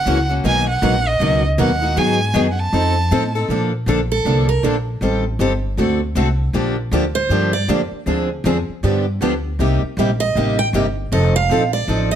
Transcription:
Already playing: violin F#5
0.06 upright bass C#2, steel-string acoustic guitar C#3 E3 F#3 A#3 C#4 E4 F#4 A#4
0.29 steel-string acoustic guitar A#3 C#4 F#4
0.44 upright bass B1, steel-string acoustic guitar B2 D#3 F#3 A#3 B3 D#4 F#4 A#4, violin G#5
0.69 violin F#5
0.82 upright bass A#1, steel-string acoustic guitar B2 D#3 F#3 A#3 B3 D#4 F#4 A#4
1.07 violin D#5
1.20 upright bass C#2, steel-string acoustic guitar B2 D#3 F#3 A#3 B3 D#4 F#4 A#4
1.58 upright bass D#2, steel-string acoustic guitar B2 D#3 F#3 A#3 B3 D#4 F#4 A#4, violin F#5
1.81 steel-string acoustic guitar A#3 D#4 F#4
1.96 upright bass G#2, steel-string acoustic guitar D#3 F#3 B3 D#4 G#4, violin G#5
2.34 upright bass F#2, steel-string acoustic guitar D#3 F#3 B3 D#4 G#4
2.51 violin F#5
2.59 violin A5
2.72 upright bass F2, steel-string acoustic guitar F3 C4 D#4 A4
3.11 upright bass A2, steel-string acoustic guitar F3 C4 D#4 A4
3.35 steel-string acoustic guitar C4 D#4 A4
3.48 upright bass A#2, steel-string acoustic guitar D3 F3 A#3 D4 A4
3.86 upright bass A#1, steel-string acoustic guitar D3 F3 A#3 D4 A4
4.12 steel-string acoustic guitar A4
4.25 upright bass C2, steel-string acoustic guitar D3 F3 A#3 D4 A4
4.49 steel-string acoustic guitar A#4
4.63 upright bass A#1, steel-string acoustic guitar D3 F3 A#3 D4 A4
5.01 upright bass A1, steel-string acoustic guitar D#3 G3 C4 G4 A4
5.39 upright bass G1, steel-string acoustic guitar D#3 G3 C4 G4 A4
5.77 upright bass D2, steel-string acoustic guitar D3 A3 C4 F#4 A4
6.15 upright bass C2, steel-string acoustic guitar D3 A3 C4 F#4 A4
6.53 upright bass A#1, steel-string acoustic guitar D3 F3 A#3 D4 G4
6.91 upright bass D2, steel-string acoustic guitar D3 F3 A#3 D4 G4
7.15 steel-string acoustic guitar C5
7.29 upright bass G2, steel-string acoustic guitar D3 F3 A#3 D4 G4
7.53 steel-string acoustic guitar D5
7.68 upright bass F2, steel-string acoustic guitar D3 F3 A#3 D4 G4
7.91 muted upright bass stroke
8.06 upright bass D2, steel-string acoustic guitar D3 F3 C4 D4 G#4
8.44 upright bass F2, steel-string acoustic guitar D3 F3 C4 D4 G#4
8.68 muted upright bass stroke
8.83 upright bass G2, steel-string acoustic guitar D3 F3 B3 D4 G4
9.21 upright bass D2, steel-string acoustic guitar D3 F3 B3 D4 G4
9.59 upright bass C2, steel-string acoustic guitar C3 G3 A#3 D#4 G4
9.83 muted upright bass stroke
9.97 upright bass A#1, steel-string acoustic guitar C3 G3 A#3 D#4 G4
10.20 steel-string acoustic guitar D#5
10.35 upright bass A1, steel-string acoustic guitar C3 G3 A#3 D#4 G4
10.59 steel-string acoustic guitar G5
10.73 upright bass G1, steel-string acoustic guitar C3 G3 A#3 D#4 G4
11.12 upright bass F1, steel-string acoustic guitar F3 C4 D#4 A4 D#5
11.36 steel-string acoustic guitar F5
11.49 upright bass A#1, steel-string acoustic guitar F3 C4 D#4 A4
11.73 steel-string acoustic guitar D5
11.88 upright bass A1, steel-string acoustic guitar F3 C4 D#4 A4
12.11 steel-string acoustic guitar D#5

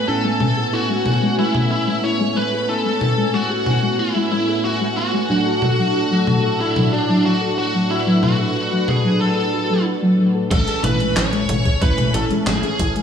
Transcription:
Already playing: analog synth pad A2 A3 B3 G#5
0.08 fm electric piano A2 A3 C#4 G#5, analog synth pad C#4, synth arpeggio sound E4, lead electric guitar A4, string machine A4
0.24 synth arpeggio sound G#3
0.40 synth arpeggio sound G#3, mid tom
0.57 synth arpeggio sound G#4
0.73 synth arpeggio sound E4, lead electric guitar F#4, string machine F#4
0.89 synth arpeggio sound G#3
1.06 synth arpeggio sound E4, mid tom
1.22 synth arpeggio sound G#3
1.38 synth arpeggio sound G#3, lead electric guitar E4, string machine E4
1.54 synth arpeggio sound G#4, mid tom
1.71 synth arpeggio sound E4, lead electric guitar E4, string machine E4
1.87 synth arpeggio sound G#3
2.03 synth arpeggio sound E4, lead electric guitar C#5, string machine C#5
2.20 synth arpeggio sound G#3
2.36 synth arpeggio sound G#3, lead electric guitar B4, string machine B4
2.53 synth arpeggio sound G#4
2.69 synth arpeggio sound E4, lead electric guitar A4, string machine A4
2.85 synth arpeggio sound G#3
3.01 synth arpeggio sound E4, mid tom
3.17 synth arpeggio sound G#3
3.34 synth arpeggio sound G#3, lead electric guitar F#4, string machine F#4
3.50 synth arpeggio sound G#4
3.66 synth arpeggio sound E4, mid tom
3.83 synth arpeggio sound G#3
3.99 synth arpeggio sound E4, lead electric guitar E4, string machine E4
4.15 synth arpeggio sound G#3
4.31 synth arpeggio sound G#3, lead electric guitar E4, string machine E4
4.48 synth arpeggio sound G#4
4.64 synth arpeggio sound E4, lead electric guitar F#4, string machine F#4
4.80 synth arpeggio sound G#3
4.97 synth arpeggio sound E4, string machine F#4, lead electric guitar F#4
5.13 synth arpeggio sound G#3
5.29 analog synth pad A2 A3 D4 F#4 A4, fm electric piano A2 A3 D4 F#4, synth arpeggio sound F#3
5.46 synth arpeggio sound A4
5.62 synth arpeggio sound F#4, mid tom
5.78 synth arpeggio sound F#3
5.95 synth arpeggio sound F#4
6.11 synth arpeggio sound F#3
6.27 synth arpeggio sound F#3, mid tom
6.44 synth arpeggio sound A4
6.60 string machine E4, lead electric guitar E4, synth arpeggio sound F#4
6.76 synth arpeggio sound F#3, mid tom
6.93 string machine D4, lead electric guitar D4, synth arpeggio sound F#4
7.09 synth arpeggio sound F#3
7.25 synth arpeggio sound F#3, string machine F#4, lead electric guitar F#4
7.41 synth arpeggio sound A4
7.58 synth arpeggio sound F#4, string machine F#4, lead electric guitar F#4
7.74 synth arpeggio sound F#3
7.90 lead electric guitar E4, string machine E4, synth arpeggio sound F#4, analog synth pad B4
8.07 synth arpeggio sound F#3
8.23 synth arpeggio sound F#3, string machine F#4, lead electric guitar F#4, mid tom
8.39 synth arpeggio sound A4
8.55 synth arpeggio sound F#4
8.72 synth arpeggio sound F#3
8.88 synth arpeggio sound F#4, string machine G#4, lead electric guitar G#4, mid tom
9.04 synth arpeggio sound F#3
9.21 synth arpeggio sound F#3, lead electric guitar A4, string machine A4
9.37 synth arpeggio sound A4
9.53 synth arpeggio sound F#4
9.70 synth arpeggio sound F#3
9.86 synth arpeggio sound F#4
10.02 synth arpeggio sound F#3
10.18 synth arpeggio sound F#3
10.35 synth arpeggio sound A4
10.51 analog synth bass A1, analog synth pad E3 A3 C#4, synth arpeggio sound G#3, lead electric guitar A4, string machine A4, kick, closed hi-hat, crash
10.67 synth arpeggio sound G#4, closed hi-hat
10.84 analog synth bass A1, synth arpeggio sound E4, string machine B4, lead electric guitar B4, closed hi-hat, mid tom
11.00 synth arpeggio sound G#3, closed hi-hat
11.16 analog synth bass A1, synth arpeggio sound E4, string machine C#5, lead electric guitar C#5, snare, clap, closed hi-hat
11.33 synth arpeggio sound G#3, closed hi-hat
11.49 analog synth bass A1, synth arpeggio sound G#3, closed hi-hat, mid tom
11.65 synth arpeggio sound G#4, kick, closed hi-hat
11.82 analog synth bass A1, synth arpeggio sound E4, string machine B4, lead electric guitar B4, kick, closed hi-hat
11.98 synth arpeggio sound G#3, closed hi-hat, mid tom
12.14 analog synth bass A1, synth arpeggio sound E4, string machine A4, lead electric guitar A4, closed hi-hat
12.31 synth arpeggio sound G#3, closed hi-hat
12.47 analog synth bass A1, synth arpeggio sound G#3, lead electric guitar G#4, string machine G#4, snare, clap, closed hi-hat
12.63 synth arpeggio sound G#4, closed hi-hat
12.79 analog synth bass A1, synth arpeggio sound E4, kick, closed hi-hat
12.96 synth arpeggio sound G#3, closed hi-hat

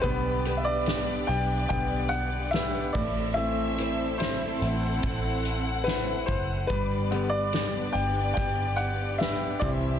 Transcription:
Already playing: nylon-string guitar C4 E4 C5, string section G4
0.02 fingered electric bass B1, upright piano D3 G3 B3 B4, string section B3 D4 D5, nylon-string guitar B3, kick, closed hi-hat
0.45 nylon-string guitar D4 G4 B4, closed hi-hat
0.57 upright piano E5
0.65 upright piano D5
0.86 nylon-string guitar G4, snare, closed hi-hat
1.27 fingered electric bass B1, upright piano G5, closed hi-hat
1.69 fingered electric bass B1, upright piano D3 G3 B3 G5, kick, closed hi-hat
2.09 upright piano F#5, closed hi-hat
2.51 nylon-string guitar D4 G4, upright piano E5, snare, closed hi-hat
2.55 nylon-string guitar B4
2.93 fingered electric bass A1, nylon-string guitar A2, string section C4 E4 A4 E5, upright piano D5, kick, crash
3.34 nylon-string guitar A2, upright piano E3 A3 C4 E5, closed hi-hat
3.78 nylon-string guitar C4 E4 C5, closed hi-hat
4.18 nylon-string guitar E4, upright piano C5, snare, closed hi-hat
4.61 fingered electric bass A1, string section F#5, closed hi-hat
5.03 fingered electric bass A1, kick, closed hi-hat
5.45 closed hi-hat
5.84 nylon-string guitar C4 E4 C5, upright piano B4, snare, closed hi-hat
6.26 fingered electric bass F#1, upright piano C5, kick, closed hi-hat
6.67 fingered electric bass G1, nylon-string guitar G3, string section B3 D4 G4 D5, upright piano B4, kick, closed hi-hat
7.11 upright piano D3 G3 B3, nylon-string guitar D4 G4 B4, closed hi-hat
7.30 upright piano D5
7.53 nylon-string guitar G4, snare, closed hi-hat
7.93 fingered electric bass G1, upright piano G5, closed hi-hat
8.34 fingered electric bass G1, upright piano G5, kick, closed hi-hat
8.76 upright piano F#5, closed hi-hat
9.18 nylon-string guitar D4 G4 B4, upright piano E5, snare, closed hi-hat
9.60 fingered electric bass C2, nylon-string guitar C3, upright piano E3 G3 C4 D5, string section C4 E4 E5, kick, closed hi-hat

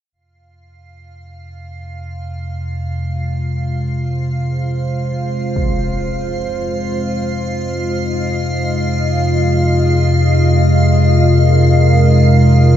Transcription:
0.11 synth drone F2 C3, ambient pad G#3 F5
1.41 ambient pad F4
2.63 ambient pad C5
3.31 ambient pad D#5
5.56 impact
10.03 ambient pad A#4

